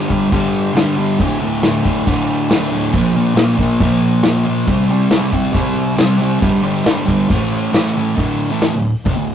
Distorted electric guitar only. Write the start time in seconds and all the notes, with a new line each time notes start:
Already playing: G2 D3
0.09 D3 G3
0.30 G2 D3 G3
0.74 G2 D3 G3
0.97 D3 G3
1.19 D2 A2 D3
1.40 A2 D3
1.62 D2 A2 D3
1.83 A2 D3
2.05 D2 A2 D3
2.50 D2 A2 D3
2.71 A2 D3
2.92 A#2 F3 A#3
3.13 F3 A#3
3.35 A#2 F3 A#3
3.58 F3 A#3
3.80 A#2 F3 A#3
4.23 A#2 F3 A#3
4.46 F3 A#3
4.67 C3 G3 C4
4.89 G3 C4
5.10 C3 G3 C4
5.32 G3 C4
5.51 C3 G3 C4
5.96 C3 G3 C4
6.18 G3 C4
6.40 G2 D3 G3
6.63 D3 G3
6.85 G2 D3 G3
7.06 D3 G3
7.29 A2 E3 A3
7.72 A2 E3 A3
7.93 E3 A3
8.16 D2 A2 D3
8.51 A2 E3 A3
8.73 D2 A2
9.05 F2 C3
9.15 D2 A2